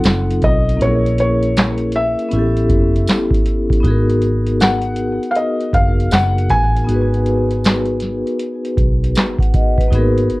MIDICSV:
0, 0, Header, 1, 5, 480
1, 0, Start_track
1, 0, Tempo, 759494
1, 509, Time_signature, 4, 2, 24, 8
1, 6573, End_track
2, 0, Start_track
2, 0, Title_t, "Felt piano"
2, 0, Program_c, 0, 0
2, 0, Note_on_c, 0, 78, 105
2, 278, Note_on_c, 0, 75, 86
2, 295, Note_off_c, 0, 78, 0
2, 517, Note_on_c, 0, 73, 95
2, 521, Note_off_c, 0, 75, 0
2, 748, Note_off_c, 0, 73, 0
2, 758, Note_on_c, 0, 73, 94
2, 1236, Note_on_c, 0, 76, 97
2, 1248, Note_off_c, 0, 73, 0
2, 1927, Note_off_c, 0, 76, 0
2, 2912, Note_on_c, 0, 78, 92
2, 3356, Note_on_c, 0, 77, 73
2, 3370, Note_off_c, 0, 78, 0
2, 3389, Note_off_c, 0, 77, 0
2, 3390, Note_on_c, 0, 75, 77
2, 3630, Note_on_c, 0, 77, 84
2, 3636, Note_off_c, 0, 75, 0
2, 3853, Note_off_c, 0, 77, 0
2, 3870, Note_on_c, 0, 78, 95
2, 4111, Note_on_c, 0, 80, 103
2, 4117, Note_off_c, 0, 78, 0
2, 5045, Note_off_c, 0, 80, 0
2, 6573, End_track
3, 0, Start_track
3, 0, Title_t, "Vibraphone"
3, 0, Program_c, 1, 11
3, 0, Control_c, 1, 64, 127
3, 0, Note_on_c, 1, 54, 68
3, 0, Note_on_c, 1, 60, 64
3, 0, Note_on_c, 1, 63, 63
3, 0, Note_on_c, 1, 65, 69
3, 0, Note_on_c, 1, 69, 71
3, 477, Note_off_c, 1, 54, 0
3, 485, Note_off_c, 1, 60, 0
3, 485, Note_on_c, 1, 58, 68
3, 494, Note_off_c, 1, 63, 0
3, 500, Note_on_c, 1, 61, 56
3, 502, Note_off_c, 1, 65, 0
3, 510, Note_off_c, 1, 69, 0
3, 517, Note_on_c, 1, 64, 52
3, 518, Control_c, 1, 64, 0
3, 532, Note_on_c, 1, 68, 57
3, 549, Note_on_c, 1, 70, 71
3, 612, Control_c, 1, 64, 127
3, 1437, Note_off_c, 1, 58, 0
3, 1444, Note_on_c, 1, 59, 67
3, 1445, Note_off_c, 1, 61, 0
3, 1454, Note_off_c, 1, 64, 0
3, 1460, Note_on_c, 1, 61, 61
3, 1462, Note_off_c, 1, 68, 0
3, 1470, Note_off_c, 1, 70, 0
3, 1475, Note_on_c, 1, 64, 67
3, 1477, Control_c, 1, 64, 0
3, 1492, Note_on_c, 1, 67, 66
3, 1509, Note_on_c, 1, 69, 76
3, 1572, Control_c, 1, 64, 127
3, 2395, Note_off_c, 1, 59, 0
3, 2403, Note_on_c, 1, 59, 70
3, 2405, Note_off_c, 1, 61, 0
3, 2413, Note_off_c, 1, 64, 0
3, 2418, Note_on_c, 1, 63, 71
3, 2421, Note_off_c, 1, 67, 0
3, 2430, Note_off_c, 1, 69, 0
3, 2434, Note_on_c, 1, 66, 67
3, 2436, Control_c, 1, 64, 0
3, 2450, Note_on_c, 1, 68, 73
3, 2467, Note_on_c, 1, 70, 87
3, 2549, Control_c, 1, 64, 127
3, 4310, Note_off_c, 1, 59, 0
3, 4318, Note_off_c, 1, 63, 0
3, 4325, Note_on_c, 1, 59, 62
3, 4326, Note_off_c, 1, 66, 0
3, 4334, Note_off_c, 1, 68, 0
3, 4340, Note_on_c, 1, 63, 59
3, 4342, Note_off_c, 1, 70, 0
3, 4356, Note_on_c, 1, 66, 62
3, 4373, Note_on_c, 1, 68, 59
3, 4388, Note_on_c, 1, 71, 65
3, 5783, Note_off_c, 1, 71, 0
3, 5941, Note_on_c, 1, 78, 66
3, 6027, Note_off_c, 1, 78, 0
3, 6035, Note_on_c, 1, 75, 64
3, 6172, Note_off_c, 1, 75, 0
3, 6181, Note_on_c, 1, 71, 60
3, 6231, Note_off_c, 1, 59, 0
3, 6239, Note_off_c, 1, 63, 0
3, 6243, Note_on_c, 1, 58, 59
3, 6247, Note_off_c, 1, 66, 0
3, 6255, Note_off_c, 1, 68, 0
3, 6259, Note_on_c, 1, 63, 68
3, 6275, Note_on_c, 1, 66, 65
3, 6277, Control_c, 1, 64, 0
3, 6284, Note_on_c, 1, 59, 71
3, 6291, Note_on_c, 1, 68, 63
3, 6306, Note_off_c, 1, 58, 0
3, 6307, Note_on_c, 1, 70, 79
3, 6381, Control_c, 1, 64, 127
3, 6407, Note_off_c, 1, 71, 0
3, 6573, Note_off_c, 1, 59, 0
3, 6573, Note_off_c, 1, 63, 0
3, 6573, Note_off_c, 1, 66, 0
3, 6573, Note_off_c, 1, 68, 0
3, 6573, Note_off_c, 1, 70, 0
3, 6573, End_track
4, 0, Start_track
4, 0, Title_t, "Fingered electric bass"
4, 0, Program_c, 2, 33
4, 33, Note_on_c, 2, 30, 87
4, 255, Note_off_c, 2, 30, 0
4, 272, Note_on_c, 2, 35, 92
4, 494, Note_off_c, 2, 35, 0
4, 514, Note_on_c, 2, 34, 110
4, 1354, Note_off_c, 2, 34, 0
4, 1472, Note_on_c, 2, 33, 102
4, 1694, Note_off_c, 2, 33, 0
4, 1704, Note_on_c, 2, 30, 92
4, 1930, Note_off_c, 2, 30, 0
4, 2429, Note_on_c, 2, 32, 118
4, 3271, Note_off_c, 2, 32, 0
4, 3625, Note_on_c, 2, 30, 82
4, 3851, Note_off_c, 2, 30, 0
4, 3872, Note_on_c, 2, 30, 101
4, 4094, Note_off_c, 2, 30, 0
4, 4112, Note_on_c, 2, 33, 83
4, 4334, Note_off_c, 2, 33, 0
4, 4352, Note_on_c, 2, 32, 98
4, 5192, Note_off_c, 2, 32, 0
4, 5544, Note_on_c, 2, 35, 80
4, 5770, Note_off_c, 2, 35, 0
4, 6270, Note_on_c, 2, 32, 113
4, 6493, Note_off_c, 2, 32, 0
4, 6573, End_track
5, 0, Start_track
5, 0, Title_t, "Drums"
5, 24, Note_on_c, 9, 54, 76
5, 25, Note_on_c, 9, 42, 72
5, 36, Note_on_c, 9, 38, 103
5, 38, Note_on_c, 9, 39, 80
5, 87, Note_off_c, 9, 54, 0
5, 89, Note_off_c, 9, 42, 0
5, 99, Note_off_c, 9, 38, 0
5, 101, Note_off_c, 9, 39, 0
5, 193, Note_on_c, 9, 42, 53
5, 257, Note_off_c, 9, 42, 0
5, 264, Note_on_c, 9, 42, 55
5, 269, Note_on_c, 9, 36, 92
5, 327, Note_off_c, 9, 42, 0
5, 333, Note_off_c, 9, 36, 0
5, 435, Note_on_c, 9, 42, 52
5, 498, Note_off_c, 9, 42, 0
5, 511, Note_on_c, 9, 42, 85
5, 574, Note_off_c, 9, 42, 0
5, 671, Note_on_c, 9, 42, 44
5, 734, Note_off_c, 9, 42, 0
5, 747, Note_on_c, 9, 42, 60
5, 810, Note_off_c, 9, 42, 0
5, 901, Note_on_c, 9, 42, 49
5, 964, Note_off_c, 9, 42, 0
5, 990, Note_on_c, 9, 54, 67
5, 993, Note_on_c, 9, 42, 103
5, 997, Note_on_c, 9, 38, 120
5, 1000, Note_on_c, 9, 39, 96
5, 1053, Note_off_c, 9, 54, 0
5, 1056, Note_off_c, 9, 42, 0
5, 1060, Note_off_c, 9, 38, 0
5, 1063, Note_off_c, 9, 39, 0
5, 1122, Note_on_c, 9, 42, 47
5, 1186, Note_off_c, 9, 42, 0
5, 1213, Note_on_c, 9, 42, 64
5, 1276, Note_off_c, 9, 42, 0
5, 1383, Note_on_c, 9, 42, 38
5, 1446, Note_off_c, 9, 42, 0
5, 1462, Note_on_c, 9, 42, 74
5, 1525, Note_off_c, 9, 42, 0
5, 1622, Note_on_c, 9, 42, 45
5, 1685, Note_off_c, 9, 42, 0
5, 1702, Note_on_c, 9, 36, 84
5, 1704, Note_on_c, 9, 42, 59
5, 1765, Note_off_c, 9, 36, 0
5, 1767, Note_off_c, 9, 42, 0
5, 1870, Note_on_c, 9, 42, 45
5, 1933, Note_off_c, 9, 42, 0
5, 1944, Note_on_c, 9, 54, 82
5, 1946, Note_on_c, 9, 42, 71
5, 1956, Note_on_c, 9, 38, 116
5, 1958, Note_on_c, 9, 39, 87
5, 2007, Note_off_c, 9, 54, 0
5, 2009, Note_off_c, 9, 42, 0
5, 2019, Note_off_c, 9, 38, 0
5, 2021, Note_off_c, 9, 39, 0
5, 2090, Note_on_c, 9, 36, 108
5, 2113, Note_on_c, 9, 42, 53
5, 2153, Note_off_c, 9, 36, 0
5, 2176, Note_off_c, 9, 42, 0
5, 2184, Note_on_c, 9, 42, 58
5, 2247, Note_off_c, 9, 42, 0
5, 2338, Note_on_c, 9, 36, 91
5, 2355, Note_on_c, 9, 42, 54
5, 2401, Note_off_c, 9, 36, 0
5, 2418, Note_off_c, 9, 42, 0
5, 2427, Note_on_c, 9, 36, 102
5, 2430, Note_on_c, 9, 42, 74
5, 2490, Note_off_c, 9, 36, 0
5, 2493, Note_off_c, 9, 42, 0
5, 2589, Note_on_c, 9, 42, 46
5, 2652, Note_off_c, 9, 42, 0
5, 2665, Note_on_c, 9, 42, 50
5, 2729, Note_off_c, 9, 42, 0
5, 2822, Note_on_c, 9, 42, 45
5, 2885, Note_off_c, 9, 42, 0
5, 2909, Note_on_c, 9, 54, 59
5, 2915, Note_on_c, 9, 42, 94
5, 2919, Note_on_c, 9, 38, 110
5, 2922, Note_on_c, 9, 39, 93
5, 2972, Note_off_c, 9, 54, 0
5, 2978, Note_off_c, 9, 42, 0
5, 2982, Note_off_c, 9, 38, 0
5, 2985, Note_off_c, 9, 39, 0
5, 3043, Note_on_c, 9, 42, 48
5, 3106, Note_off_c, 9, 42, 0
5, 3134, Note_on_c, 9, 42, 67
5, 3197, Note_off_c, 9, 42, 0
5, 3305, Note_on_c, 9, 42, 41
5, 3368, Note_off_c, 9, 42, 0
5, 3384, Note_on_c, 9, 42, 67
5, 3447, Note_off_c, 9, 42, 0
5, 3543, Note_on_c, 9, 42, 40
5, 3606, Note_off_c, 9, 42, 0
5, 3623, Note_on_c, 9, 36, 91
5, 3628, Note_on_c, 9, 42, 60
5, 3686, Note_off_c, 9, 36, 0
5, 3691, Note_off_c, 9, 42, 0
5, 3793, Note_on_c, 9, 42, 46
5, 3856, Note_off_c, 9, 42, 0
5, 3864, Note_on_c, 9, 54, 84
5, 3867, Note_on_c, 9, 42, 62
5, 3877, Note_on_c, 9, 38, 108
5, 3880, Note_on_c, 9, 39, 84
5, 3927, Note_off_c, 9, 54, 0
5, 3930, Note_off_c, 9, 42, 0
5, 3940, Note_off_c, 9, 38, 0
5, 3943, Note_off_c, 9, 39, 0
5, 4035, Note_on_c, 9, 42, 50
5, 4098, Note_off_c, 9, 42, 0
5, 4106, Note_on_c, 9, 42, 56
5, 4109, Note_on_c, 9, 36, 85
5, 4169, Note_off_c, 9, 42, 0
5, 4172, Note_off_c, 9, 36, 0
5, 4276, Note_on_c, 9, 42, 46
5, 4339, Note_off_c, 9, 42, 0
5, 4353, Note_on_c, 9, 42, 82
5, 4416, Note_off_c, 9, 42, 0
5, 4512, Note_on_c, 9, 42, 42
5, 4575, Note_off_c, 9, 42, 0
5, 4587, Note_on_c, 9, 42, 53
5, 4650, Note_off_c, 9, 42, 0
5, 4744, Note_on_c, 9, 42, 47
5, 4807, Note_off_c, 9, 42, 0
5, 4830, Note_on_c, 9, 54, 62
5, 4836, Note_on_c, 9, 42, 100
5, 4841, Note_on_c, 9, 38, 117
5, 4844, Note_on_c, 9, 39, 97
5, 4893, Note_off_c, 9, 54, 0
5, 4900, Note_off_c, 9, 42, 0
5, 4904, Note_off_c, 9, 38, 0
5, 4907, Note_off_c, 9, 39, 0
5, 4965, Note_on_c, 9, 42, 39
5, 5028, Note_off_c, 9, 42, 0
5, 5057, Note_on_c, 9, 42, 73
5, 5071, Note_on_c, 9, 38, 36
5, 5120, Note_off_c, 9, 42, 0
5, 5134, Note_off_c, 9, 38, 0
5, 5225, Note_on_c, 9, 42, 39
5, 5288, Note_off_c, 9, 42, 0
5, 5303, Note_on_c, 9, 42, 70
5, 5366, Note_off_c, 9, 42, 0
5, 5463, Note_on_c, 9, 42, 42
5, 5526, Note_off_c, 9, 42, 0
5, 5542, Note_on_c, 9, 36, 86
5, 5546, Note_on_c, 9, 42, 54
5, 5606, Note_off_c, 9, 36, 0
5, 5609, Note_off_c, 9, 42, 0
5, 5711, Note_on_c, 9, 42, 42
5, 5774, Note_off_c, 9, 42, 0
5, 5784, Note_on_c, 9, 54, 80
5, 5787, Note_on_c, 9, 42, 69
5, 5797, Note_on_c, 9, 38, 108
5, 5800, Note_on_c, 9, 39, 91
5, 5847, Note_off_c, 9, 54, 0
5, 5850, Note_off_c, 9, 42, 0
5, 5860, Note_off_c, 9, 38, 0
5, 5863, Note_off_c, 9, 39, 0
5, 5931, Note_on_c, 9, 36, 101
5, 5955, Note_on_c, 9, 42, 52
5, 5994, Note_off_c, 9, 36, 0
5, 6019, Note_off_c, 9, 42, 0
5, 6027, Note_on_c, 9, 42, 61
5, 6029, Note_on_c, 9, 36, 104
5, 6090, Note_off_c, 9, 42, 0
5, 6093, Note_off_c, 9, 36, 0
5, 6179, Note_on_c, 9, 36, 87
5, 6197, Note_on_c, 9, 42, 51
5, 6242, Note_off_c, 9, 36, 0
5, 6260, Note_off_c, 9, 42, 0
5, 6268, Note_on_c, 9, 36, 105
5, 6273, Note_on_c, 9, 42, 81
5, 6331, Note_off_c, 9, 36, 0
5, 6336, Note_off_c, 9, 42, 0
5, 6432, Note_on_c, 9, 42, 49
5, 6495, Note_off_c, 9, 42, 0
5, 6508, Note_on_c, 9, 42, 54
5, 6572, Note_off_c, 9, 42, 0
5, 6573, End_track
0, 0, End_of_file